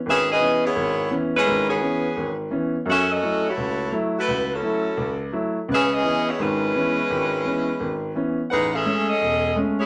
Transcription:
X:1
M:4/4
L:1/8
Q:"Swing" 1/4=170
K:C#m
V:1 name="Saxophone section"
[CGBe] [CGBd]2 [B,EGc]3 z [G,CEB]- | [G,CEB] [E,B,CG]4 z3 | [CFAe] [CFAd]2 [A,EFc]3 z [A,EFB]- | [A,EFB] [F,CEA]4 z3 |
[CGBe] [CGBd]2 [B,EGc] [G,CEB]4- | [G,CEB]6 z2 | [DGBf] [CGAe]2 [CGAd]3 z [A,EGc] |]
V:2 name="Grand piano" clef=bass
G,,,2 [E,B,C] z G,,,2 [E,B,C] z | [G,,,G,,]2 [E,B,C] z G,,,2 [E,B,C] z | [F,,F,]2 [F,A,E] z C,,2 [F,A,E] z | C,,2 [F,A,E] z C,,2 [F,A,E] z |
[C,,C,]2 [E,B,C] z [G,,,G,,]2 [E,B,C] z | G,,,2 [E,B,C] z G,,,2 [E,B,C] z | A,,,2 [G,A,C] z E,,,2 [G,A,C] z |]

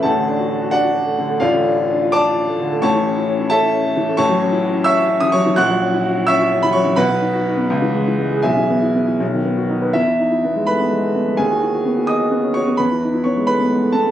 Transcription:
X:1
M:6/8
L:1/16
Q:3/8=86
K:A
V:1 name="Grand piano"
[Afa]6 [Fdf]6 | [=Fd=f]6 [dad']6 | [cac']6 [Aea]6 | [K:E] [cac']6 [ec'e']3 d' [cc']2 |
[fc'f']6 [ec'e']3 b [cc']2 | [Bfb]12 | [Geg]6 z6 | [Ee]6 [Bb]6 |
[Gg]6 [dd']4 [cc']2 | [Bb]4 [cc']2 [Bb]4 [Aa]2 |]
V:2 name="Grand piano"
[A,,,A,,] D, D F D F D F D A, D, A, | [A,,,A,,] D, D =F D F D F D A, D, A, | [A,,,A,,] E, C E C E C E C A, E, A, | [K:E] [A,,,A,,] F, C E F E C F C E, F, E, |
[^A,,,^A,,] F, C E F E C F C E, F, E, | [B,,,B,,] B, D F D B, C,, E, G, E G, G | B,,, E, B, E B, E B,,, D, B, F D B | E,, E D E B, G, A, B, G, A, B, G, |
D,, F E F B, F G F B, C F B, | E,, E D E B, G, A, B, G, A, B, G, |]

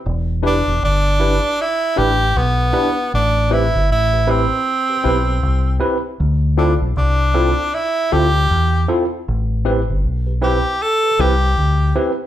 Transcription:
X:1
M:4/4
L:1/16
Q:"Swing 16ths" 1/4=78
K:Am
V:1 name="Tine electric piano"
z2 [DEGB] z3 [DEGB] z3 [DEGB] z3 [DEGB] z | z2 [CEGB] z2 [GB] [CEGB] z2 [GB] [CEGB] z3 [CEGB] z | z2 [CEFA] z3 [CEFA] z3 [CEFA] z3 [CEFA] z | z2 [CEGB] z2 [GB] [CEGB] z2 [GB] [CEGB] z3 [CEGB] z |]
V:2 name="Tenor saxophone"
z2 D2 D4 E2 G2 B,4 | D2 E2 E2 C8 z2 | z2 D2 D4 E2 G4 z2 | z6 G2 A2 G4 z2 |]
V:3 name="Fingered electric bass" clef=bass
E,,,3 E,,, G,,,3 z3 A,,,2 B,,,2 z2 | A,,,3 G,,, A,,,3 z3 B,,,2 C,,2 z2 | D,,3 B,,, C,,3 z3 D,,2 E,,2 z2 | A,,,3 G,,, B,,,3 z3 C,,2 D,,2 z2 |]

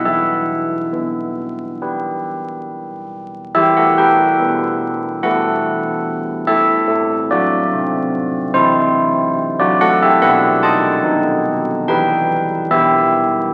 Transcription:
X:1
M:4/4
L:1/16
Q:1/4=72
K:Em
V:1 name="Church bells"
e12- e2 z2 | [Ge] [Af] [Bg]6 [Af]6 [Ae]2- | [Ae]2 [Fd]6 [Ec]4- [Ec] [Fd] [Af] [Ge] | [Bf]2 [^da]6 [Bg]4 [Ge]4 |]
V:2 name="Church bells"
E,4 B,4 [GB]8 | E,4 B,4 [B,E]8 | A,4 C4 C8 | B,4 [B,^D]4 E,4 [B,E]4 |]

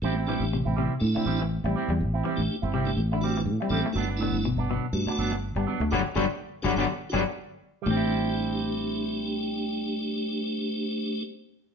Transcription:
X:1
M:4/4
L:1/16
Q:"Swing 16ths" 1/4=122
K:Ador
V:1 name="Tonewheel organ"
[A,DG] z [A,DG]2 z4 [A,DE]3 z4 z | z3 [A,DG]2 z2 [A,DG] z2 [A,DF]2 z2 [A,DA] z | [A,DF] z [A,DE]2 z4 [A,DF]3 z4 z | [DFG] z [DFG] z3 [DFG] [DFG] z2 [DFG] z4 z |
[A,DG]16- | [A,DG]16 |]
V:2 name="Clean electric guitar"
[G,CE] [CE] [G,CE] z2 [CE] [G,CE] z2 [CE] [G,CE] z2 [CE] [G,CE] z | z [CE] [G,CE] z2 [CE] [G,CE] z2 E [G,C] z2 [CE] [G,CE] z | [F,B,D] [B,D] [F,B,] z2 [B,D] [F,B,D] z2 [B,D] [F,B,D] z2 [B,D] [F,B,D] z | [G,B,D] z [G,B,D] z3 [G,B,D] [G,B,D] z2 [G,B,D] z4 z |
[G,CE]16- | [G,CE]16 |]
V:3 name="Clean electric guitar" clef=bass
z2 E,2 C,2 C,2 z D,2 E,2 G,2 G, | z2 E,2 z2 C,2 z D,2 E,2 G,2 A, | z2 D,2 B,,2 B,,2 z4 z G,2 A, | [D,F,G,] z [D,F,G,] z3 [D,F,G,] [D,F,G,] z2 [D,F,G,] z4 z |
A,,2 z12 z2 | z16 |]
V:4 name="Fingered electric bass" clef=bass
A,,,3 A,,,2 A,,,2 z A,, z A,,,3 A,,, z E,, | A,,,2 z A,,, z G,,,3 A,,,4 A,, z A,,, z | G,,,3 G,,,2 G,,,2 z G,, z G,,,3 G,,, z D,, | G,,, z G,,, z3 G,,, G,,, z2 G,,, z4 z |
A,,,16- | A,,,16 |]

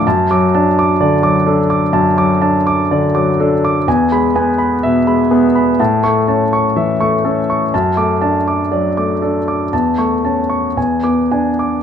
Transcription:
X:1
M:4/4
L:1/16
Q:1/4=62
K:Dlyd
V:1 name="Grand piano"
a d' a d' d d' A d' a d' a d' d d' A d' | g b g b e b G b a c' a c' e c' A c' | a d' a d' d d' A d' a c' a c' g d' g d' |]
V:2 name="Grand piano" clef=bass
F,, F, D2 D, F, D2 F,, F, D2 D, F, D2 | E,, G, B,2 B,, G, B,2 A,, A, C2 E, A, C2 | F,, A, D2 F, A, D2 E,, A, C2 E,, B, D2 |]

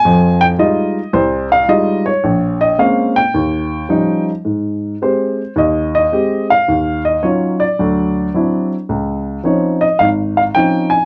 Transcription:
X:1
M:4/4
L:1/8
Q:"Swing" 1/4=108
K:Ab
V:1 name="Upright piano"
a g e2 c f e d- | d e f g4 z | z2 c2 e e2 f- | f e d =d4 z |
z2 d e f f g a |]
V:2 name="Upright piano"
[F,,F,]2 [G,A,EF] z C,,2 [G,A,EF] z | B,,,2 [A,B,CD] z E,,2 [F,G,DE] z | A,,2 [A,CG] z E,,2 [A,CG] z | E,,2 [_G,DEF] z [=D,,^F,]2 [F,C=D=E] z |
D,,2 [F,CDE] z A,,,2 [F,CDE] z |]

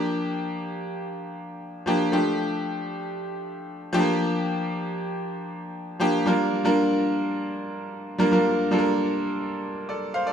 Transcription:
X:1
M:4/4
L:1/16
Q:1/4=116
K:Gdor
V:1 name="Grand piano"
[F,B,DG]4- [F,B,DG] z8 z [F,B,DG]2 | [F,A,DG]6- [F,A,DG] z6 z [F,A,B,DG]2- | [F,A,B,DG]4- [F,A,B,DG] z8 z [F,B,DG]2 | [G,B,DFB]2 z [G,B,DFB]6- [G,B,DFB] z4 z [G,B,DFB] |
[G,B,DFB]2 z [G,B,DFAB]6- [G,B,DFAB] z2 [Ad]2 [cf] [Ad] |]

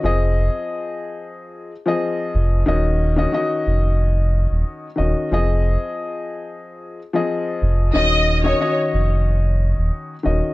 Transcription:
X:1
M:4/4
L:1/16
Q:"Swing 16ths" 1/4=91
K:Fphr
V:1 name="Violin section"
z16 | z16 | z16 | e3 d2 z8 z3 |]
V:2 name="Upright piano"
[F,CAe]8- [F,CAe]2 z [F,CAe]4- [F,CAe] | [E,DGe]3 [E,DGe] [E,DGe]8- [E,DGe] z [E,DGe]2 | [F,CAe]8- [F,CAe]2 z [F,CAe]4- [F,CAe] | [E,DGe]3 [E,DGe] [E,DGe]8- [E,DGe] z [E,DGe]2 |]
V:3 name="Sub bass" clef=bass
F,,,3 z8 z3 F,,,2 | E,,,4 z2 F,,,4- F,,, E,,, z2 E,,, z | F,,,3 z8 z3 F,,,2 | E,,,4 z2 F,,,4- F,,, E,,, z2 E,,, z |]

